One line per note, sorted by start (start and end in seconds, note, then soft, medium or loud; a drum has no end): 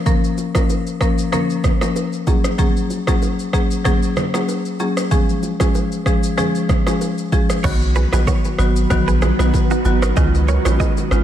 0.06 0.22 F3 medium
0.06 0.22 A#3 medium
0.06 0.22 C#4 medium
0.06 0.23 A#4 medium
0.06 kick loud
0.06 low conga medium
0.06 shaker medium
0.24 shaker soft
0.38 low bongo soft
0.38 shaker medium
0.55 0.97 F3 medium
0.55 0.97 A#3 medium
0.55 0.98 C#4 medium
0.55 0.98 A#4 medium
0.55 kick medium
0.55 cross-stick medium
0.55 low bongo medium
0.55 shaker medium
0.70 high bongo medium
0.70 shaker medium
0.87 shaker medium
1.01 1.30 F3 medium
1.01 1.30 A#3 medium
1.01 1.30 C#4 medium
1.01 1.30 A#4 medium
1.01 kick medium
1.01 cross-stick medium
1.01 shaker medium
1.18 shaker medium
1.32 1.77 F3 medium
1.32 1.77 A#3 medium
1.32 1.77 C#4 medium
1.32 1.77 A#4 loud
1.32 cross-stick medium
1.32 low conga medium
1.32 shaker medium
1.50 shaker soft
1.64 kick medium
1.64 cross-stick medium
1.64 low conga medium
1.64 shaker soft
1.81 1.95 F3 medium
1.81 1.95 A#3 medium
1.81 1.95 C#4 medium
1.81 1.95 A#4 medium
1.81 cross-stick medium
1.81 low bongo medium
1.81 shaker medium
1.96 high bongo medium
1.96 shaker medium
2.13 shaker soft
2.27 2.43 F#3 medium
2.27 2.43 A#3 medium
2.27 2.43 C#4 medium
2.27 2.44 G#4 medium
2.27 kick medium
2.27 low bongo medium
2.27 shaker soft
2.44 cross-stick medium
2.44 high bongo medium
2.44 shaker medium
2.58 2.75 F#3 medium
2.58 2.75 A#3 medium
2.58 2.75 C#4 medium
2.58 2.75 G#4 loud
2.58 kick loud
2.58 low conga medium
2.58 shaker medium
2.77 shaker soft
2.90 low bongo medium
2.90 shaker medium
3.07 3.50 F#3 medium
3.07 3.50 A#3 medium
3.07 3.50 C#4 medium
3.07 3.50 G#4 medium
3.07 kick medium
3.07 cross-stick medium
3.07 low bongo medium
3.07 shaker medium
3.22 high bongo medium
3.22 shaker medium
3.39 shaker soft
3.53 3.83 F#3 medium
3.53 3.83 A#3 medium
3.53 3.83 C#4 medium
3.53 3.83 G#4 medium
3.53 kick medium
3.53 cross-stick medium
3.53 shaker medium
3.71 shaker medium
3.85 4.30 F#3 loud
3.85 4.30 A#3 medium
3.85 4.30 C#4 medium
3.85 4.30 G#4 loud
3.85 kick loud
3.85 cross-stick medium
3.85 low conga medium
3.85 shaker medium
4.02 shaker soft
4.16 cross-stick loud
4.16 low conga medium
4.16 shaker soft
4.34 4.47 F#3 medium
4.34 4.47 A#3 medium
4.34 4.47 C#4 medium
4.34 4.47 G#4 medium
4.34 cross-stick medium
4.34 low bongo medium
4.34 shaker medium
4.49 high bongo medium
4.49 shaker medium
4.65 shaker soft
4.80 4.96 F#3 medium
4.80 4.96 A#3 medium
4.80 4.96 C#4 medium
4.80 4.96 G#4 medium
4.80 low bongo medium
4.80 shaker soft
4.97 cross-stick medium
4.97 high bongo medium
4.97 shaker medium
5.11 5.27 F3 medium
5.11 5.28 G#3 medium
5.11 5.28 C#4 medium
5.11 5.28 G#4 loud
5.11 kick loud
5.11 low conga medium
5.11 shaker medium
5.29 shaker soft
5.43 low bongo medium
5.43 shaker medium
5.60 6.03 F3 medium
5.60 6.03 G#3 medium
5.60 6.03 C#4 medium
5.60 6.03 G#4 medium
5.60 kick medium
5.60 cross-stick medium
5.60 low bongo medium
5.60 shaker medium
5.75 high bongo medium
5.75 shaker medium
5.92 shaker medium
6.06 6.35 F3 medium
6.06 6.35 G#3 medium
6.06 6.36 C#4 medium
6.06 6.36 G#4 medium
6.06 kick medium
6.06 cross-stick medium
6.06 shaker medium
6.23 shaker medium
6.37 6.82 F3 medium
6.37 6.82 G#3 medium
6.37 6.83 C#4 medium
6.37 6.83 G#4 loud
6.37 cross-stick medium
6.37 low conga medium
6.37 shaker medium
6.55 shaker soft
6.69 kick medium
6.69 cross-stick medium
6.69 low conga medium
6.69 shaker soft
6.86 7.00 F3 medium
6.86 7.00 G#3 medium
6.86 7.00 C#4 medium
6.86 7.00 G#4 medium
6.86 cross-stick medium
6.86 low bongo medium
6.86 shaker medium
7.01 high bongo medium
7.01 shaker medium
7.18 shaker soft
7.32 7.48 F3 medium
7.32 7.49 G#3 medium
7.32 7.49 C#4 medium
7.32 7.49 G#4 medium
7.32 kick medium
7.32 low bongo medium
7.32 shaker soft
7.50 cross-stick medium
7.50 high bongo medium
7.50 shaker medium
7.64 8.06 B1 loud
7.64 7.80 D#3 medium
7.64 10.14 D#3 medium
7.64 7.80 F#3 medium
7.64 10.14 F#3 medium
7.64 10.14 B3 medium
7.64 7.80 B3 medium
7.64 10.14 F#4 medium
7.64 7.80 F#4 medium
7.64 7.75 F#4 medium
7.64 10.14 B4 medium
7.64 7.74 C#5 medium
7.64 kick loud
7.64 crash medium
7.64 low conga medium
7.64 shaker medium
7.82 shaker soft
7.96 8.06 G#4 medium
7.96 8.06 B4 medium
7.96 low bongo medium
7.96 shaker medium
8.13 8.25 A#1 medium
8.13 8.55 D#3 medium
8.13 8.55 F#3 medium
8.13 8.55 B3 medium
8.13 8.55 F#4 medium
8.13 8.22 G#4 medium
8.13 8.21 B4 medium
8.13 cross-stick medium
8.13 low bongo medium
8.13 shaker medium
8.27 8.46 F#4 medium
8.27 8.45 C#5 medium
8.27 kick medium
8.27 high bongo medium
8.27 shaker medium
8.45 high bongo medium
8.45 shaker medium
8.58 8.85 G#1 medium
8.58 8.88 D#3 medium
8.58 8.88 F#3 medium
8.58 8.88 B3 medium
8.58 8.88 F#4 medium
8.58 cross-stick medium
8.58 shaker medium
8.76 shaker medium
8.90 9.32 A#1 loud
8.90 9.35 D#3 medium
8.90 9.35 F#3 medium
8.90 9.35 B3 medium
8.90 9.35 F#4 loud
8.90 kick loud
8.90 cross-stick medium
8.90 low conga medium
8.90 shaker medium
9.08 9.17 G#4 medium
9.08 9.16 B4 medium
9.08 shaker medium
9.22 9.33 F4 medium
9.22 9.32 G#4 medium
9.22 cross-stick medium
9.22 low conga medium
9.22 shaker soft
9.39 9.51 B1 medium
9.39 9.52 D#3 medium
9.39 9.52 F#3 medium
9.39 9.53 B3 medium
9.39 9.53 F#4 medium
9.39 cross-stick medium
9.39 low bongo medium
9.39 shaker medium
9.54 kick medium
9.54 high bongo medium
9.54 shaker medium
9.71 9.80 D#4 medium
9.71 9.79 F#4 medium
9.71 shaker soft
9.85 10.12 G#1 loud
9.85 10.01 D#3 medium
9.85 10.01 F#3 medium
9.85 10.01 B3 medium
9.85 10.01 F#4 medium
9.85 low bongo medium
9.85 shaker soft
10.02 10.11 F#4 medium
10.02 10.11 A#4 medium
10.02 cross-stick medium
10.02 high bongo medium
10.02 shaker medium
10.16 10.58 C#2 loud
10.16 11.24 C#3 medium
10.16 10.33 D#3 medium
10.16 11.24 F3 medium
10.16 10.33 G#3 medium
10.16 11.24 G#3 medium
10.16 10.33 C#4 medium
10.16 11.24 D#4 medium
10.16 11.24 F4 medium
10.16 10.33 F4 loud
10.16 10.27 G#4 medium
10.16 10.27 D#5 medium
10.16 kick loud
10.16 low conga medium
10.16 shaker medium
10.35 shaker soft
10.48 10.59 A#4 medium
10.48 10.58 C#5 medium
10.48 low bongo medium
10.48 shaker medium
10.65 10.78 A#1 medium
10.65 11.08 D#3 medium
10.65 11.08 G#3 medium
10.65 11.08 C#4 medium
10.65 11.08 F4 medium
10.65 10.75 A#4 medium
10.65 10.74 C#5 medium
10.65 cross-stick medium
10.65 low bongo medium
10.65 shaker medium
10.80 10.99 G#4 medium
10.80 10.98 D#5 medium
10.80 kick medium
10.80 high bongo medium
10.80 shaker medium
10.97 high bongo medium
10.97 shaker medium
11.11 11.24 G#1 medium
11.11 11.24 D#3 medium
11.11 11.24 G#3 medium
11.11 11.24 C#4 medium
11.11 11.24 F4 medium
11.11 cross-stick medium
11.11 shaker medium